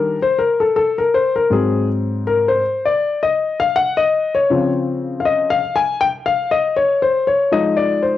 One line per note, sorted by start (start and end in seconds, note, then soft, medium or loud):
0.00 0.15 D#3 medium
0.00 0.15 G3 medium
0.00 0.16 D4 medium
0.00 0.24 A#4 medium
0.22 0.39 C5 medium
0.39 0.61 A#4 medium
0.60 0.75 A4 medium
0.76 0.98 A4 medium
0.98 1.14 A#4 medium
1.14 1.34 C5 medium
1.36 1.52 A#4 medium
1.50 2.59 G#2 medium
1.50 2.60 F#3 soft
1.50 2.60 C4 medium
1.50 1.87 G#4 medium
2.27 2.49 A#4 medium
2.48 2.87 C5 medium
2.85 3.20 D5 medium
3.23 3.58 D#5 medium
3.60 3.76 F5 loud
3.76 3.98 F#5 loud
3.97 4.36 D#5 medium
4.35 4.70 C#5 medium
4.50 5.59 C#3 medium
4.50 5.59 F3 soft
4.50 5.60 C4 medium
5.20 5.26 F5 medium
5.25 5.52 D#5 medium
5.50 5.77 F5 medium
5.76 5.99 G#5 loud
6.01 6.06 G5 loud
6.26 6.52 F5 medium
6.51 6.77 D#5 medium
6.76 7.02 C#5 medium
7.02 7.27 C5 medium
7.27 7.52 C#5 medium
7.51 8.18 F3 medium
7.51 8.18 G#3 medium
7.51 8.18 D#4 medium
7.51 7.78 D#5 medium
7.77 8.02 D5 medium
8.02 8.18 C5 medium